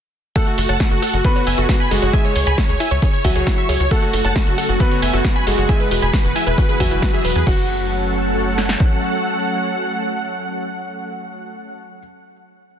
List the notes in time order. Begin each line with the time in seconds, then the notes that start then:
0.36 A3 F#4 A4 F#5, kick, closed hi-hat, ride
0.47 F#4, closed hi-hat
0.58 F#1 F#4 A4, open hi-hat, ride
0.69 F#1 C#5 F#5 A5, closed hi-hat
0.80 F#4, kick, snare, closed hi-hat, ride
0.91 F#1 F#4 A4, closed hi-hat
1.02 F#4 A4 F#5, open hi-hat, ride
1.13 F#1 F#4, closed hi-hat
1.25 B3 F#4 A4 B4, kick, closed hi-hat, ride
1.36 F#4 C#5, closed hi-hat
1.47 F#1 E5 G#5, open hi-hat, ride
1.58 F#1 F#4 A4, closed hi-hat
1.69 F#4, kick, snare, closed hi-hat, ride
1.80 G#5 B5, closed hi-hat
1.91 F#1 G#3 F#4 G#4 A4, open hi-hat, ride
2.02 F#1 F#4 C#5, closed hi-hat
2.13 E4 E5 G#5, kick, closed hi-hat, ride
2.25 C#5, closed hi-hat
2.36 C#2 G#4 C#5, open hi-hat, ride
2.47 C#2 C#5 G#5 B5, closed hi-hat
2.58 C#5, kick, snare, closed hi-hat, ride
2.69 C#2 G#4 C#5, closed hi-hat
2.80 E4 E5 G#5, open hi-hat, ride
2.91 C#2 C#5, closed hi-hat
3.02 G#4 C#5, kick, closed hi-hat, ride
3.13 C#5, closed hi-hat
3.24 C#2 F#3 F#4 E5 G#5, kick, open hi-hat, ride
3.36 C#2 G#4 C#5, closed hi-hat
3.47 E4 C#5, kick, snare, closed hi-hat, ride
3.58 E5 C#6, closed hi-hat
3.69 C#2 G#4 C#5, open hi-hat, ride
3.80 C#2 C#5, closed hi-hat
3.91 C#3 F#3 A3 F#4 A4 F#5, kick, closed hi-hat, ride
4.02 F#4, closed hi-hat
4.13 F#1 F#4 A4, open hi-hat, ride
4.25 F#1 C#5 F#5 A5, closed hi-hat
4.36 F#4, kick, snare, closed hi-hat, ride
4.47 F#1 F#4 A4, closed hi-hat
4.58 F#4 A4 F#5, open hi-hat, ride
4.69 F#1 F#4, closed hi-hat
4.80 B3 F#4 A4 B4, kick, closed hi-hat, ride
4.91 F#4 C#5, closed hi-hat
5.02 F#1 E5 G#5, open hi-hat, ride
5.13 F#1 F#4 A4, closed hi-hat
5.24 F#4, kick, snare, closed hi-hat, ride
5.36 G#5 B5, closed hi-hat
5.47 F#1 G#3 F#4 G#4 A4, open hi-hat, ride
5.58 F#1 F#4 C#5, closed hi-hat
5.69 E3 G#3 B3 E4 E5 G#5, kick, closed hi-hat, ride
5.80 B4, closed hi-hat
5.91 E1 F#4 B4, open hi-hat, ride
6.02 E1 G#4 G#5 B5, closed hi-hat
6.13 B4, kick, snare, closed hi-hat, ride
6.25 E1 F#4 B4, closed hi-hat
6.36 E4 E5 G#5, open hi-hat, ride
6.47 E1 B4, closed hi-hat
6.58 F#4 B4, kick, closed hi-hat, ride
6.69 G#4 B4, closed hi-hat
6.80 E2 F#3 F#4 B4 E5 G#5, kick, open hi-hat, ride
6.91 E1 E4 B4, closed hi-hat
7.02 F#4 B4, kick, snare, closed hi-hat, ride
7.13 G#4 E5, closed hi-hat
7.25 E1 B4, open hi-hat, ride
7.36 E2 G#4 B4, closed hi-hat
7.47 F#1 F#3 A3 C#4 F#4 A4 F#5, kick, crash
8.58 snare
8.69 snare
8.80 kick